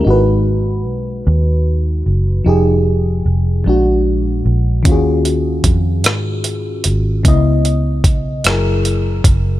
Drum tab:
HH |------|------|xxxxxx|xxxxxx|
SD |------|------|---r--|---r--|
BD |------|------|o-o---|o-o--o|